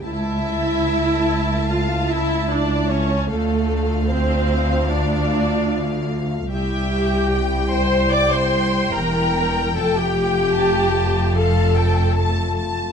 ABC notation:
X:1
M:4/4
L:1/16
Q:1/4=74
K:Dm
V:1 name="Violin section"
a16 | f16 | e4 g4 g8- | g4 a4 f2 g2 a2 a2 |]
V:2 name="Violin section"
e8 f2 e2 d2 ^c2 | A4 c4 d6 z2 | g6 c'2 d' c'3 b4 | a g6- g a6 z2 |]
V:3 name="Viola section"
E8 F2 E2 D2 ^C2 | A,4 C4 D6 z2 | G6 c2 d c3 B4 | A G6- G A6 z2 |]
V:4 name="French horn section"
[A,E]16 | [A,F]16 | [G,E]16 | [A,F]16 |]
V:5 name="Cello section" clef=bass
^C,,16 | D,,16 | C,,12 E,,4 | F,,16 |]
V:6 name="Double bass section" clef=bass
^C,,16 | D,,16 | C,,12 E,,,4 | F,,,16 |]